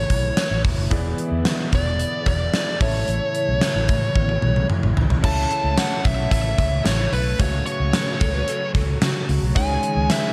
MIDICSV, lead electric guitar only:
0, 0, Header, 1, 2, 480
1, 0, Start_track
1, 0, Tempo, 540541
1, 811, Time_signature, 4, 2, 24, 8
1, 9172, End_track
2, 0, Start_track
2, 0, Title_t, "Lead electric guitar"
2, 0, Program_c, 0, 29
2, 0, Note_on_c, 0, 73, 78
2, 537, Note_off_c, 0, 73, 0
2, 1554, Note_on_c, 0, 74, 102
2, 1990, Note_off_c, 0, 74, 0
2, 2025, Note_on_c, 0, 74, 106
2, 2465, Note_off_c, 0, 74, 0
2, 2505, Note_on_c, 0, 73, 94
2, 4143, Note_off_c, 0, 73, 0
2, 4660, Note_on_c, 0, 81, 96
2, 5136, Note_off_c, 0, 81, 0
2, 5139, Note_on_c, 0, 78, 101
2, 5373, Note_on_c, 0, 76, 91
2, 5382, Note_off_c, 0, 78, 0
2, 5600, Note_off_c, 0, 76, 0
2, 5611, Note_on_c, 0, 76, 98
2, 6057, Note_off_c, 0, 76, 0
2, 6089, Note_on_c, 0, 73, 86
2, 6313, Note_off_c, 0, 73, 0
2, 6332, Note_on_c, 0, 71, 85
2, 6569, Note_on_c, 0, 73, 86
2, 6579, Note_off_c, 0, 71, 0
2, 6794, Note_off_c, 0, 73, 0
2, 6804, Note_on_c, 0, 73, 83
2, 7732, Note_off_c, 0, 73, 0
2, 8493, Note_on_c, 0, 80, 109
2, 8974, Note_on_c, 0, 76, 101
2, 8986, Note_off_c, 0, 80, 0
2, 9172, Note_off_c, 0, 76, 0
2, 9172, End_track
0, 0, End_of_file